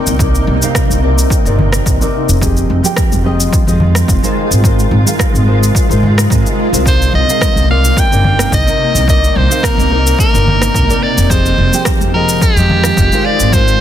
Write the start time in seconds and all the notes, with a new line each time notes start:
Already playing: C3 A#3 C4 D#4 A#4 D5
0.07 C2, shaker
0.19 C3 C4 D#4 A#4 D5, kick, shaker
0.35 shaker
0.47 C2, high conga
0.62 C3 C4 D#4 A#4 F5, shaker
0.75 kick, cross-stick, shaker
0.89 C2, high conga, shaker
1.02 C3 C4 D#4 A#4 D5
1.18 shaker
1.30 kick, shaker
1.45 G1 C3 C4 D#4 A#4 D5, shaker
1.59 high conga, low conga
1.73 cross-stick, shaker
1.86 C2, kick, shaker
2.00 C3 C4 D#4 A#4 D5, shaker
2.29 F1, shaker
2.41 D#3 F3 G#3 C4 F4 G4 G#4 D#5, kick, shaker
2.57 shaker
2.70 F1, high conga
2.83 F3 C4 G4 G#4 G5, shaker
2.97 kick, cross-stick, shaker
3.12 F1, high conga, shaker
3.24 F3 C4 G4 G#4 D#5
3.40 shaker
3.53 kick, shaker
3.67 F2 F3 C4 G4 G#4 D#5, shaker
3.80 high conga, low conga
3.95 cross-stick, shaker
4.08 F1, kick, shaker
4.23 G#3 D#4 F4 A#4 C5, shaker
4.36 C3 G#3
4.51 G#1, shaker
4.64 G#3 D#4 F4 A#4 C5, kick, shaker
4.79 shaker
4.91 G#1, high conga
5.05 G#3 D#4 F4 A#4 F5, shaker
5.19 kick, cross-stick, shaker
5.34 G#1, high conga, shaker
5.46 G#3 D#4 F4 A#4 C5
5.63 shaker
5.75 kick, shaker
5.88 G#2 G#3 D#4 F4 A#4 C5, shaker
6.03 high conga, low conga
6.18 cross-stick, shaker
6.30 G#1 G#3 D#4 F4 A#4 C5, kick, shaker
6.46 shaker
6.72 C2 G#3 D#4 F4 A#4 C5, shaker
6.85 C3 A#3 C4 D#4 A#4 C5 D5, kick, shaker
7.02 shaker
7.13 C2 D#5, high conga
7.28 C3 C4 D#4 A#4 F5, shaker
7.41 kick, cross-stick, shaker
7.56 C2, high conga, shaker
7.69 C3 C4 D#4 A#4 D5 F5
7.85 shaker
7.97 G5, kick, shaker
8.11 G1 C3 C4 D#4 A#4 D5, shaker
8.24 high conga, low conga
8.39 cross-stick, shaker
8.52 C2 D#5, kick, shaker
8.66 C3 C4 D#4 A#4 D#5, shaker
8.95 C2, shaker
9.06 C3 C4 D#4 A#4 D5 D#5, kick, shaker
9.24 shaker
9.36 C2 C5, high conga
9.49 C3 C4 D#4 A#4 F5, shaker
9.63 A#4, kick, cross-stick, shaker
9.78 C2, high conga, shaker
9.90 C3 C4 D#4 A#4 D5
10.07 shaker
10.19 A#4, kick, shaker
10.33 G1 C3 C4 D#4 A#4 D5, shaker
10.47 high conga, low conga
10.62 cross-stick, shaker
10.74 C2, kick, shaker
10.88 C3 C4 D#4 A#4 D5, shaker
11.03 D5
11.17 F1, shaker
11.30 D#3 F3 G#3 C4 F4 G4 G#4 C5 D#5, kick, shaker
11.46 shaker
11.58 F1, high conga
11.72 F3 C4 G4 G#4 G5, shaker
11.85 kick, cross-stick, shaker
12.01 F1, high conga, shaker
12.14 F3 C4 G4 G#4 A#4 D#5
12.29 shaker
12.41 G4, kick, shaker
12.56 F2 F3 G#3 C4 G4 D#5, shaker
12.69 high conga, low conga
12.84 cross-stick, shaker
12.97 F1, kick, shaker
13.12 G#3 D#4 F4 A#4 C5, shaker
13.25 C3 D5
13.40 G#1, shaker
13.52 G#3 D#4 F4 A#4 C5, kick, shaker
13.68 shaker